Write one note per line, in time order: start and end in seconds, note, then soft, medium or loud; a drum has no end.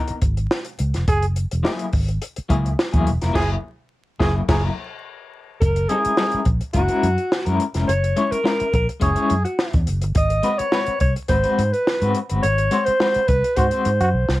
0.00 0.11 E3 medium
0.00 0.11 B3 medium
0.00 0.11 D#4 medium
0.00 0.12 A#4 loud
0.08 muted fingered electric bass stroke medium
0.08 closed hi-hat soft
0.22 0.46 G#1 loud
0.22 kick medium
0.22 closed hi-hat medium
0.37 closed hi-hat soft
0.51 snare loud
0.65 closed hi-hat medium
0.79 0.92 C#2 medium
0.79 closed hi-hat medium
0.94 1.06 F1 medium
0.94 snare soft
0.94 closed hi-hat soft
1.08 1.44 F#1 loud
1.08 1.26 G#4 loud
1.08 kick loud
1.08 closed hi-hat loud
1.22 closed hi-hat soft
1.36 closed hi-hat medium
1.51 1.63 E1 medium
1.51 closed hi-hat medium
1.63 1.84 F#3 medium
1.63 1.84 A#3 medium
1.63 1.85 E4 loud
1.63 1.85 G#4 loud
1.63 snare loud
1.79 closed hi-hat medium
1.93 2.17 G#1 medium
1.93 kick medium
1.93 open hi-hat medium
2.08 closed hi-hat medium
2.22 closed hi-hat medium
2.36 muted fingered electric bass stroke medium
2.36 closed hi-hat soft
2.49 2.74 C#2 loud
2.49 2.67 F#3 medium
2.49 2.67 A#3 loud
2.49 2.68 E4 medium
2.49 2.68 G#4 medium
2.49 kick loud
2.49 closed hi-hat medium
2.66 closed hi-hat soft
2.79 snare loud
2.93 3.05 E2 medium
2.93 3.10 F#3 medium
2.93 3.10 A#3 medium
2.93 3.09 E4 medium
2.93 3.09 G#4 loud
2.93 kick loud
2.93 closed hi-hat soft
3.07 3.20 E1 medium
3.07 closed hi-hat medium
3.21 3.34 F1 medium
3.21 3.32 F#3 soft
3.21 3.33 A#3 medium
3.21 3.33 E4 medium
3.21 3.34 A#4 medium
3.21 snare soft
3.21 closed hi-hat soft
3.33 3.55 F#1 medium
3.33 3.53 F#3 loud
3.33 3.54 A#3 loud
3.33 3.54 E4 loud
3.33 3.50 G#4 loud
3.33 3.55 G#4 loud
3.33 kick loud
3.33 snare loud
3.33 crash medium
4.20 4.40 F#1 loud
4.20 4.40 F#3 loud
4.20 4.40 A#3 loud
4.20 4.39 E4 loud
4.20 4.39 G#4 loud
4.20 4.35 G#4 medium
4.20 kick loud
4.20 snare medium
4.49 4.68 F#1 medium
4.49 4.68 F#3 loud
4.49 4.68 A#3 loud
4.49 4.68 E4 loud
4.49 4.63 G#4 medium
4.49 4.69 A#4 medium
4.49 kick loud
4.49 snare loud
4.49 crash medium
5.61 5.85 F#1 medium
5.61 5.90 A#4 medium
5.61 kick loud
5.61 closed hi-hat loud
5.76 closed hi-hat soft
5.89 6.10 G#3 medium
5.89 6.11 C#4 medium
5.89 6.11 E4 loud
5.89 6.46 G#4 medium
5.89 6.11 A#4 medium
5.89 closed hi-hat medium
6.05 muted fingered electric bass stroke soft
6.05 closed hi-hat medium
6.17 6.39 G#3 loud
6.17 6.39 C#4 medium
6.17 6.39 E4 medium
6.17 6.40 A#4 loud
6.17 snare loud
6.32 muted fingered electric bass stroke soft
6.32 closed hi-hat medium
6.45 6.59 A#1 medium
6.45 kick medium
6.45 closed hi-hat medium
6.61 closed hi-hat soft
6.73 6.87 F#1 medium
6.73 6.89 G#3 medium
6.73 6.89 C#4 medium
6.73 6.89 E4 medium
6.73 7.56 F#4 loud
6.73 6.88 A#4 medium
6.73 kick medium
6.73 closed hi-hat medium
6.88 7.07 G#3 medium
6.88 7.07 C#4 medium
6.88 7.06 E4 medium
6.88 7.06 A#4 medium
6.88 closed hi-hat soft
7.03 7.16 F#2 medium
7.03 closed hi-hat medium
7.18 closed hi-hat soft
7.32 snare loud
7.45 7.58 F#2 medium
7.45 7.64 G#3 medium
7.45 7.63 C#4 medium
7.45 7.63 E4 medium
7.45 7.63 A#4 medium
7.45 closed hi-hat soft
7.60 closed hi-hat medium
7.74 7.87 F1 medium
7.74 7.89 G#3 medium
7.74 7.88 C#4 medium
7.74 7.88 E4 medium
7.74 7.88 A#4 medium
7.74 snare soft
7.74 closed hi-hat soft
7.88 8.12 F#1 medium
7.88 8.33 C#5 medium
7.88 closed hi-hat loud
8.04 closed hi-hat medium
8.16 8.35 G#3 medium
8.16 8.35 C#4 medium
8.16 8.35 E4 medium
8.16 8.35 C#5 medium
8.16 closed hi-hat medium
8.32 8.74 A#4 loud
8.32 muted fingered electric bass stroke soft
8.32 closed hi-hat medium
8.44 8.63 G#3 loud
8.44 8.63 C#4 medium
8.44 8.63 E4 medium
8.44 8.64 A#4 loud
8.44 snare loud
8.60 muted fingered electric bass stroke soft
8.60 closed hi-hat medium
8.74 8.86 A#1 medium
8.74 8.87 A#4 medium
8.74 kick medium
8.74 closed hi-hat medium
8.89 closed hi-hat medium
9.00 9.15 F#1 medium
9.00 9.15 G#3 medium
9.00 9.15 C#4 medium
9.00 9.15 E4 medium
9.00 9.43 G#4 medium
9.00 9.14 C#5 medium
9.00 kick medium
9.00 closed hi-hat medium
9.15 9.34 G#3 medium
9.15 9.33 C#4 medium
9.15 9.33 E4 medium
9.15 9.33 C#5 medium
9.15 closed hi-hat soft
9.30 9.44 F#2 loud
9.30 closed hi-hat medium
9.44 9.84 F#4 medium
9.44 closed hi-hat soft
9.59 snare loud
9.73 9.86 E2 medium
9.73 kick loud
9.73 closed hi-hat soft
9.87 10.03 F#1 medium
9.87 closed hi-hat medium
10.01 10.14 G1 loud
10.01 closed hi-hat medium
10.15 10.40 G#1 loud
10.15 10.59 D#5 medium
10.15 kick loud
10.15 closed hi-hat loud
10.30 closed hi-hat soft
10.43 10.61 G#3 medium
10.43 10.62 C4 medium
10.43 10.62 F#4 medium
10.43 10.62 B4 medium
10.43 closed hi-hat medium
10.58 11.00 C#5 loud
10.58 muted fingered electric bass stroke soft
10.58 closed hi-hat medium
10.72 10.90 G#3 medium
10.72 10.90 C4 medium
10.72 10.91 F#4 medium
10.72 10.91 B4 loud
10.72 snare loud
10.86 muted fingered electric bass stroke soft
10.86 closed hi-hat medium
11.00 11.14 C2 medium
11.00 11.14 C#5 medium
11.00 kick medium
11.00 closed hi-hat medium
11.16 closed hi-hat soft
11.28 11.42 G#1 medium
11.28 11.44 G#3 medium
11.28 11.44 C4 medium
11.28 11.43 F#4 medium
11.28 11.43 B4 medium
11.28 11.74 C5 medium
11.28 kick medium
11.28 closed hi-hat medium
11.44 11.62 G#3 medium
11.44 11.61 C4 medium
11.44 11.61 F#4 medium
11.44 11.61 B4 medium
11.44 closed hi-hat soft
11.59 11.71 G#2 loud
11.59 closed hi-hat medium
11.72 12.15 B4 medium
11.72 closed hi-hat soft
11.87 snare loud
12.01 12.13 G#2 loud
12.01 12.19 G#3 medium
12.01 12.18 C4 medium
12.01 12.19 F#4 medium
12.01 12.18 B4 medium
12.01 closed hi-hat medium
12.15 closed hi-hat medium
12.29 12.42 G1 medium
12.29 12.43 G#3 medium
12.29 12.43 C4 medium
12.29 12.43 F#4 medium
12.29 12.42 B4 medium
12.29 closed hi-hat medium
12.43 12.68 G#1 loud
12.43 12.87 C#5 loud
12.43 closed hi-hat loud
12.58 closed hi-hat soft
12.71 12.89 G#3 loud
12.71 12.90 C4 medium
12.71 12.90 F#4 medium
12.71 12.90 C5 loud
12.71 closed hi-hat medium
12.85 13.29 C5 loud
12.85 muted fingered electric bass stroke soft
12.85 closed hi-hat medium
13.00 13.18 G#3 loud
13.00 13.18 C4 medium
13.00 13.19 F#4 loud
13.00 13.19 B4 loud
13.00 snare loud
13.14 muted fingered electric bass stroke soft
13.14 closed hi-hat medium
13.28 13.41 C2 medium
13.28 13.57 B4 loud
13.28 kick medium
13.28 closed hi-hat medium
13.44 closed hi-hat medium
13.56 13.70 G#2 medium
13.56 13.71 G#3 medium
13.56 13.72 C4 medium
13.56 13.67 F#4 medium
13.56 13.72 F#4 medium
13.56 14.40 C5 medium
13.56 13.71 C5 medium
13.56 kick medium
13.56 closed hi-hat medium
13.71 13.89 G#3 medium
13.71 13.89 C4 medium
13.71 13.89 F#4 medium
13.71 13.89 C5 medium
13.71 closed hi-hat soft
13.85 13.99 G#2 loud
13.85 closed hi-hat medium
14.00 14.12 F#2 loud
14.00 14.09 F#4 medium
14.00 closed hi-hat soft
14.14 14.26 B1 medium
14.29 14.40 C2 medium
14.29 snare medium